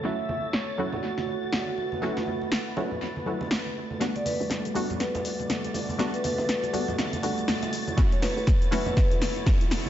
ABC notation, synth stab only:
X:1
M:4/4
L:1/8
Q:"Swing 16ths" 1/4=121
K:Edor
V:1 name="Synth stab"
[F,A,CEF]3 [F,A,CEF]4- [F,A,CEF] | [F,A,CEF]3 [F,A,CEF] z [F,A,CEF]3 | [G,A,B,DF]3 [G,A,B,DF]4- [G,A,B,DF] | [G,A,B,DF]3 [G,A,B,DF] z [G,A,B,DF]2 z |
[F,A,CEF]3 [F,A,CEF]4- [F,A,CEF] |]